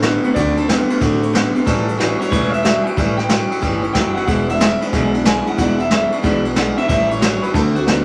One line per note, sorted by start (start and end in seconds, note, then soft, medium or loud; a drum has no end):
0.00 0.16 A1 loud
0.00 0.24 D3 medium
0.00 0.22 D3 medium
0.00 0.24 A3 medium
0.00 0.22 B3 medium
0.00 0.37 C5 medium
0.00 snare loud
0.00 ride medium
0.04 0.25 C4 medium
0.04 0.23 F#4 medium
0.24 0.34 D3 medium
0.24 0.34 A3 medium
0.24 0.35 B3 medium
0.24 0.35 C4 medium
0.24 0.36 F#4 medium
0.24 ride medium
0.34 0.81 D2 medium
0.34 0.56 D3 medium
0.34 0.66 D3 medium
0.34 0.56 A3 medium
0.34 0.66 A3 medium
0.34 0.57 C4 medium
0.34 0.56 F#4 medium
0.34 0.56 D5 loud
0.34 kick loud
0.34 ride medium
0.57 0.68 A3 soft
0.57 0.68 C4 soft
0.57 0.68 F#4 medium
0.57 0.68 A4 medium
0.57 ride medium
0.68 0.89 D3 medium
0.68 0.88 D3 medium
0.68 0.90 A3 medium
0.68 0.88 B3 loud
0.68 0.89 C4 medium
0.68 0.87 F#4 medium
0.68 1.33 C5 medium
0.68 snare loud
0.68 ride medium
0.89 1.00 D3 medium
0.89 1.00 A3 soft
0.89 1.00 B3 medium
0.89 1.00 C4 soft
0.89 1.00 F#4 medium
0.89 ride medium
1.00 1.47 A1 loud
1.00 1.22 D3 medium
1.00 1.31 D3 medium
1.00 1.31 A3 medium
1.00 1.22 A3 medium
1.00 1.21 C4 medium
1.00 1.20 F#4 loud
1.00 kick loud
1.00 snare soft
1.00 ride medium
1.21 1.33 A3 medium
1.21 1.32 C4 medium
1.21 1.33 F#4 medium
1.21 ride medium
1.33 1.54 D3 medium
1.33 1.52 D3 medium
1.33 1.55 A3 medium
1.33 1.53 B3 loud
1.33 1.54 C4 medium
1.33 1.52 F#4 medium
1.33 snare loud
1.33 ride medium
1.53 1.65 D3 medium
1.53 1.66 A3 soft
1.53 1.65 B3 medium
1.53 1.66 C4 medium
1.53 1.65 F#4 medium
1.53 ride medium
1.65 2.12 A1 medium
1.65 1.86 A2 medium
1.65 1.96 A2 medium
1.65 1.87 E3 medium
1.65 1.97 E3 loud
1.65 1.87 G3 medium
1.65 1.87 C#4 medium
1.65 1.86 E4 medium
1.65 1.98 A4 medium
1.65 kick loud
1.65 snare soft
1.65 ride medium
1.87 1.98 G3 soft
1.87 1.98 C#4 soft
1.87 1.99 E4 medium
1.87 ride medium
1.98 2.18 A2 loud
1.98 2.19 E3 medium
1.98 2.18 F#3 medium
1.98 2.20 G3 medium
1.98 2.19 C#4 medium
1.98 2.18 E4 medium
1.98 2.20 B4 loud
1.98 snare loud
1.98 ride medium
2.19 2.30 A2 medium
2.19 2.30 F#3 medium
2.19 2.30 G3 soft
2.19 2.31 C#4 medium
2.19 2.31 E4 medium
2.19 2.29 C#5 loud
2.19 ride medium
2.30 2.77 E1 loud
2.30 2.52 A2 medium
2.30 2.62 A2 medium
2.30 2.52 E3 medium
2.30 2.62 E3 loud
2.30 2.52 G3 medium
2.30 2.51 C#4 loud
2.30 2.50 E4 loud
2.30 2.50 C#5 loud
2.30 kick loud
2.30 ride medium
2.50 2.63 G3 soft
2.50 2.64 C#4 soft
2.50 2.63 E4 medium
2.50 2.61 E5 loud
2.50 ride medium
2.63 2.83 A2 medium
2.63 2.85 E3 medium
2.63 2.84 F#3 loud
2.63 2.85 G3 medium
2.63 2.84 C#4 medium
2.63 2.84 E4 medium
2.63 2.83 E5 loud
2.63 snare loud
2.63 ride medium
2.83 2.96 A2 medium
2.83 2.96 F#3 medium
2.83 2.96 G3 soft
2.83 2.96 C#4 medium
2.83 2.97 E4 medium
2.83 2.95 G5 loud
2.83 ride medium
2.95 3.43 A1 medium
2.95 3.18 A2 medium
2.95 3.27 A2 medium
2.95 3.18 E3 medium
2.95 3.27 E3 loud
2.95 3.18 G3 medium
2.95 3.16 C#4 medium
2.95 3.15 E4 medium
2.95 3.17 E5 loud
2.95 kick loud
2.95 ride medium
3.16 3.28 G3 soft
3.16 3.29 C#4 medium
3.16 3.29 E4 medium
3.16 3.79 G5 loud
3.16 snare soft
3.16 ride medium
3.29 3.48 A2 medium
3.29 3.50 E3 medium
3.29 3.49 F#3 medium
3.29 3.50 G3 medium
3.29 3.49 C#4 medium
3.29 3.48 E4 medium
3.29 snare loud
3.29 ride medium
3.49 3.61 A2 medium
3.49 3.61 F#3 medium
3.49 3.60 G3 soft
3.49 3.60 C#4 soft
3.49 3.61 E4 medium
3.49 ride medium
3.61 3.90 G1 medium
3.61 3.82 A2 medium
3.61 3.93 A2 medium
3.61 3.83 E3 loud
3.61 3.93 E3 loud
3.61 3.83 G3 loud
3.61 3.82 C#4 loud
3.61 3.81 E4 loud
3.61 kick medium
3.61 ride medium
3.82 3.93 G3 soft
3.82 3.93 C#4 medium
3.82 3.94 E4 medium
3.82 ride medium
3.93 4.22 F#1 medium
3.93 4.14 A2 medium
3.93 4.15 E3 medium
3.93 4.14 F#3 loud
3.93 4.16 G3 medium
3.93 4.15 C#4 medium
3.93 4.14 E4 medium
3.93 4.14 G5 medium
3.93 kick medium
3.93 snare loud
3.93 ride medium
4.15 4.26 A2 medium
4.15 4.26 F#3 medium
4.15 4.27 G3 soft
4.15 4.27 C#4 medium
4.15 4.27 E4 medium
4.15 4.25 F#5 medium
4.15 ride medium
4.26 4.73 E1 medium
4.26 4.57 E2 medium
4.26 4.48 E2 medium
4.26 4.57 B2 medium
4.26 4.48 B2 medium
4.26 4.48 E3 medium
4.26 4.49 G#3 medium
4.26 4.48 D4 medium
4.26 4.47 E4 medium
4.26 4.49 F#5 loud
4.26 kick loud
4.26 ride medium
4.48 4.59 E3 soft
4.48 4.60 G#3 soft
4.48 4.60 D4 medium
4.48 4.60 E4 medium
4.48 4.59 E5 medium
4.48 ride medium
4.60 4.79 E2 medium
4.60 4.79 C#3 loud
4.60 4.81 E3 medium
4.60 4.82 G#3 medium
4.60 4.80 D4 medium
4.60 4.80 E4 medium
4.60 4.80 E5 medium
4.60 snare loud
4.60 ride medium
4.81 4.91 E2 medium
4.81 4.92 C#3 medium
4.81 4.92 E3 soft
4.81 4.93 G#3 soft
4.81 4.93 D4 medium
4.81 4.92 E4 medium
4.81 ride medium
4.93 5.38 B1 loud
4.93 5.23 E2 medium
4.93 5.14 E2 loud
4.93 5.23 B2 loud
4.93 5.14 B2 medium
4.93 5.14 E3 medium
4.93 5.14 G#3 loud
4.93 5.13 D4 loud
4.93 5.13 E4 loud
4.93 kick loud
4.93 snare soft
4.93 ride medium
5.14 5.23 E3 soft
5.14 5.24 G#3 medium
5.14 5.25 D4 medium
5.14 5.25 E4 medium
5.14 ride medium
5.24 5.44 E2 medium
5.24 5.45 C#3 loud
5.24 5.46 E3 medium
5.24 5.46 G#3 medium
5.24 5.46 D4 medium
5.24 5.45 E4 medium
5.24 5.45 G#5 loud
5.24 snare loud
5.24 ride medium
5.46 5.57 E2 medium
5.46 5.57 C#3 medium
5.46 5.57 E3 soft
5.46 5.57 G#3 soft
5.46 5.58 D4 medium
5.46 5.58 E4 medium
5.46 5.58 F#5 loud
5.46 ride medium
5.57 6.04 E1 medium
5.57 5.79 E2 medium
5.57 5.88 E2 medium
5.57 5.79 B2 medium
5.57 5.89 B2 loud
5.57 5.79 E3 medium
5.57 5.79 G#3 medium
5.57 5.78 D4 medium
5.57 5.77 E4 medium
5.57 5.80 F#5 medium
5.57 kick loud
5.57 snare soft
5.57 ride medium
5.78 5.90 E3 soft
5.78 5.91 G#3 soft
5.78 5.91 D4 soft
5.78 5.90 E4 soft
5.78 5.90 E5 medium
5.78 ride medium
5.91 6.10 E2 medium
5.91 6.10 C#3 loud
5.91 6.12 E3 medium
5.91 6.12 G#3 medium
5.91 6.11 D4 medium
5.91 6.11 E4 medium
5.91 6.11 E5 medium
5.91 snare loud
5.91 ride medium
6.12 6.22 E2 medium
6.12 6.22 C#3 medium
6.12 6.22 E3 soft
6.12 6.23 G#3 soft
6.12 6.23 D4 soft
6.12 6.23 E4 medium
6.12 ride medium
6.22 6.69 B1 loud
6.22 6.44 E2 medium
6.22 6.53 E2 medium
6.22 6.44 B2 loud
6.22 6.54 B2 medium
6.22 6.44 E3 loud
6.22 6.45 G#3 loud
6.22 6.45 D4 loud
6.22 6.44 E4 loud
6.22 kick loud
6.22 ride medium
6.45 6.54 E3 soft
6.45 6.55 G#3 medium
6.45 6.56 D4 medium
6.45 6.56 E4 medium
6.45 ride medium
6.55 6.75 E2 medium
6.55 6.75 C#3 loud
6.55 6.77 E3 medium
6.55 6.77 G#3 medium
6.55 6.76 D4 medium
6.55 6.75 E4 medium
6.55 6.77 F#5 loud
6.55 snare loud
6.55 ride medium
6.76 6.87 E2 medium
6.76 6.87 C#3 medium
6.76 6.89 E3 soft
6.76 6.89 G#3 soft
6.76 6.89 D4 medium
6.76 6.88 E4 medium
6.76 6.87 E5 medium
6.76 ride medium
6.88 7.35 A1 medium
6.88 7.19 A2 medium
6.88 7.10 A2 medium
6.88 7.19 E3 loud
6.88 7.10 E3 medium
6.88 7.10 G3 medium
6.88 7.10 C#4 medium
6.88 7.09 E4 loud
6.88 7.08 E5 loud
6.88 kick loud
6.88 ride medium
7.10 7.21 G3 soft
7.10 7.22 C#4 soft
7.10 7.22 E4 soft
7.10 7.20 C#5 loud
7.10 ride medium
7.20 7.39 A2 medium
7.20 7.42 E3 medium
7.20 7.40 F#3 loud
7.20 7.43 G3 medium
7.20 7.43 C#4 medium
7.20 7.42 C#5 loud
7.20 snare loud
7.20 ride medium
7.24 7.42 E4 medium
7.42 7.52 A2 medium
7.42 7.53 F#3 medium
7.42 7.55 G3 soft
7.42 7.55 C#4 medium
7.42 7.54 E4 medium
7.42 7.54 B4 loud
7.42 ride medium
7.53 8.00 D2 loud
7.53 7.84 D3 medium
7.53 7.75 D3 medium
7.53 7.84 A3 medium
7.53 7.75 A3 loud
7.53 7.75 C4 loud
7.53 7.74 F#4 medium
7.53 7.60 A4 medium
7.53 kick loud
7.53 ride medium
7.75 7.87 A3 soft
7.75 7.87 C4 soft
7.75 7.85 F#4 medium
7.75 7.87 F#4 medium
7.75 ride medium
7.86 8.05 D3 medium
7.86 8.05 A3 medium
7.86 8.05 B3 loud
7.86 8.05 C4 medium
7.86 8.05 F#4 medium
7.86 snare loud
7.86 ride medium